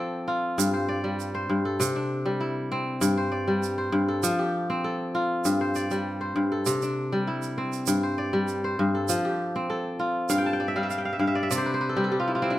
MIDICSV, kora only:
0, 0, Header, 1, 2, 480
1, 0, Start_track
1, 0, Tempo, 606061
1, 471, Time_signature, 4, 2, 24, 8
1, 9970, End_track
2, 0, Start_track
2, 0, Title_t, "Kora"
2, 0, Program_c, 0, 46
2, 0, Note_on_c, 0, 53, 89
2, 0, Note_on_c, 0, 60, 76
2, 0, Note_on_c, 0, 67, 62
2, 0, Note_on_c, 0, 69, 66
2, 0, Note_on_c, 0, 72, 67
2, 86, Note_off_c, 0, 72, 0
2, 219, Note_on_c, 0, 65, 83
2, 460, Note_on_c, 0, 43, 88
2, 511, Note_off_c, 0, 53, 0
2, 582, Note_on_c, 0, 72, 65
2, 701, Note_on_c, 0, 74, 73
2, 741, Note_off_c, 0, 67, 0
2, 823, Note_on_c, 0, 55, 73
2, 1020, Note_off_c, 0, 69, 0
2, 1062, Note_off_c, 0, 72, 0
2, 1066, Note_on_c, 0, 72, 64
2, 1175, Note_off_c, 0, 43, 0
2, 1184, Note_on_c, 0, 43, 70
2, 1289, Note_off_c, 0, 60, 0
2, 1309, Note_on_c, 0, 69, 64
2, 1418, Note_off_c, 0, 65, 0
2, 1423, Note_on_c, 0, 48, 92
2, 1471, Note_off_c, 0, 43, 0
2, 1471, Note_off_c, 0, 55, 0
2, 1549, Note_on_c, 0, 62, 65
2, 1578, Note_off_c, 0, 74, 0
2, 1786, Note_on_c, 0, 55, 78
2, 1904, Note_on_c, 0, 64, 64
2, 2006, Note_off_c, 0, 72, 0
2, 2151, Note_on_c, 0, 60, 88
2, 2352, Note_off_c, 0, 69, 0
2, 2386, Note_on_c, 0, 43, 100
2, 2432, Note_off_c, 0, 48, 0
2, 2432, Note_off_c, 0, 55, 0
2, 2514, Note_on_c, 0, 72, 71
2, 2627, Note_on_c, 0, 74, 67
2, 2753, Note_on_c, 0, 55, 78
2, 2880, Note_off_c, 0, 62, 0
2, 2989, Note_off_c, 0, 72, 0
2, 2992, Note_on_c, 0, 72, 65
2, 3098, Note_off_c, 0, 43, 0
2, 3108, Note_on_c, 0, 43, 87
2, 3145, Note_off_c, 0, 64, 0
2, 3235, Note_on_c, 0, 69, 67
2, 3351, Note_on_c, 0, 53, 92
2, 3392, Note_off_c, 0, 43, 0
2, 3392, Note_off_c, 0, 55, 0
2, 3476, Note_on_c, 0, 67, 66
2, 3504, Note_off_c, 0, 74, 0
2, 3577, Note_off_c, 0, 60, 0
2, 3720, Note_on_c, 0, 60, 78
2, 3833, Note_off_c, 0, 69, 0
2, 3836, Note_on_c, 0, 69, 70
2, 3933, Note_off_c, 0, 72, 0
2, 4076, Note_on_c, 0, 65, 84
2, 4317, Note_on_c, 0, 43, 87
2, 4353, Note_off_c, 0, 53, 0
2, 4442, Note_on_c, 0, 72, 64
2, 4558, Note_on_c, 0, 74, 68
2, 4595, Note_off_c, 0, 67, 0
2, 4681, Note_on_c, 0, 55, 70
2, 4879, Note_off_c, 0, 69, 0
2, 4913, Note_off_c, 0, 72, 0
2, 4916, Note_on_c, 0, 72, 64
2, 5025, Note_off_c, 0, 43, 0
2, 5034, Note_on_c, 0, 43, 76
2, 5146, Note_off_c, 0, 60, 0
2, 5161, Note_on_c, 0, 69, 62
2, 5275, Note_off_c, 0, 65, 0
2, 5276, Note_on_c, 0, 48, 86
2, 5313, Note_off_c, 0, 43, 0
2, 5314, Note_off_c, 0, 55, 0
2, 5406, Note_on_c, 0, 62, 60
2, 5435, Note_off_c, 0, 74, 0
2, 5643, Note_on_c, 0, 55, 77
2, 5761, Note_on_c, 0, 64, 70
2, 5857, Note_off_c, 0, 72, 0
2, 6000, Note_on_c, 0, 60, 75
2, 6205, Note_off_c, 0, 69, 0
2, 6237, Note_on_c, 0, 43, 92
2, 6274, Note_off_c, 0, 48, 0
2, 6274, Note_off_c, 0, 55, 0
2, 6361, Note_on_c, 0, 72, 56
2, 6478, Note_on_c, 0, 74, 70
2, 6598, Note_on_c, 0, 55, 76
2, 6736, Note_off_c, 0, 62, 0
2, 6841, Note_off_c, 0, 72, 0
2, 6845, Note_on_c, 0, 72, 65
2, 6953, Note_off_c, 0, 43, 0
2, 6963, Note_on_c, 0, 43, 83
2, 7002, Note_off_c, 0, 64, 0
2, 7085, Note_on_c, 0, 69, 59
2, 7200, Note_on_c, 0, 53, 88
2, 7234, Note_off_c, 0, 43, 0
2, 7234, Note_off_c, 0, 55, 0
2, 7324, Note_on_c, 0, 67, 65
2, 7355, Note_off_c, 0, 74, 0
2, 7426, Note_off_c, 0, 60, 0
2, 7568, Note_on_c, 0, 60, 77
2, 7677, Note_off_c, 0, 69, 0
2, 7680, Note_on_c, 0, 69, 65
2, 7785, Note_off_c, 0, 72, 0
2, 7916, Note_on_c, 0, 65, 79
2, 8154, Note_on_c, 0, 43, 87
2, 8154, Note_on_c, 0, 77, 75
2, 8195, Note_off_c, 0, 53, 0
2, 8220, Note_on_c, 0, 79, 75
2, 8284, Note_on_c, 0, 81, 69
2, 8337, Note_off_c, 0, 79, 0
2, 8340, Note_on_c, 0, 79, 63
2, 8395, Note_on_c, 0, 74, 72
2, 8443, Note_off_c, 0, 67, 0
2, 8458, Note_on_c, 0, 76, 71
2, 8505, Note_off_c, 0, 65, 0
2, 8505, Note_off_c, 0, 77, 0
2, 8520, Note_on_c, 0, 55, 76
2, 8523, Note_on_c, 0, 77, 73
2, 8573, Note_off_c, 0, 76, 0
2, 8577, Note_on_c, 0, 76, 69
2, 8631, Note_off_c, 0, 77, 0
2, 8634, Note_on_c, 0, 77, 66
2, 8694, Note_off_c, 0, 79, 0
2, 8697, Note_on_c, 0, 79, 68
2, 8723, Note_off_c, 0, 69, 0
2, 8750, Note_off_c, 0, 77, 0
2, 8754, Note_on_c, 0, 77, 68
2, 8801, Note_off_c, 0, 76, 0
2, 8812, Note_on_c, 0, 76, 68
2, 8857, Note_off_c, 0, 43, 0
2, 8864, Note_off_c, 0, 77, 0
2, 8866, Note_on_c, 0, 43, 81
2, 8867, Note_on_c, 0, 77, 73
2, 8926, Note_off_c, 0, 76, 0
2, 8929, Note_on_c, 0, 76, 77
2, 8972, Note_off_c, 0, 81, 0
2, 8988, Note_off_c, 0, 74, 0
2, 8991, Note_on_c, 0, 74, 78
2, 8994, Note_off_c, 0, 60, 0
2, 9047, Note_off_c, 0, 76, 0
2, 9051, Note_on_c, 0, 76, 78
2, 9098, Note_off_c, 0, 77, 0
2, 9110, Note_off_c, 0, 74, 0
2, 9113, Note_on_c, 0, 48, 93
2, 9113, Note_on_c, 0, 74, 80
2, 9155, Note_off_c, 0, 43, 0
2, 9155, Note_off_c, 0, 55, 0
2, 9170, Note_on_c, 0, 72, 78
2, 9233, Note_on_c, 0, 71, 67
2, 9294, Note_off_c, 0, 72, 0
2, 9297, Note_on_c, 0, 72, 76
2, 9349, Note_off_c, 0, 71, 0
2, 9352, Note_on_c, 0, 71, 74
2, 9420, Note_on_c, 0, 69, 72
2, 9435, Note_off_c, 0, 79, 0
2, 9476, Note_on_c, 0, 55, 78
2, 9476, Note_on_c, 0, 67, 72
2, 9532, Note_off_c, 0, 69, 0
2, 9535, Note_on_c, 0, 69, 68
2, 9593, Note_off_c, 0, 67, 0
2, 9596, Note_on_c, 0, 67, 70
2, 9659, Note_on_c, 0, 65, 70
2, 9707, Note_off_c, 0, 76, 0
2, 9722, Note_on_c, 0, 64, 63
2, 9777, Note_off_c, 0, 65, 0
2, 9780, Note_on_c, 0, 65, 67
2, 9835, Note_off_c, 0, 64, 0
2, 9838, Note_on_c, 0, 60, 82
2, 9838, Note_on_c, 0, 64, 74
2, 9885, Note_off_c, 0, 71, 0
2, 9902, Note_on_c, 0, 62, 78
2, 9957, Note_off_c, 0, 60, 0
2, 9970, Note_off_c, 0, 48, 0
2, 9970, Note_off_c, 0, 55, 0
2, 9970, Note_off_c, 0, 62, 0
2, 9970, Note_off_c, 0, 64, 0
2, 9970, Note_off_c, 0, 65, 0
2, 9970, Note_off_c, 0, 67, 0
2, 9970, Note_off_c, 0, 69, 0
2, 9970, Note_off_c, 0, 72, 0
2, 9970, Note_off_c, 0, 74, 0
2, 9970, End_track
0, 0, End_of_file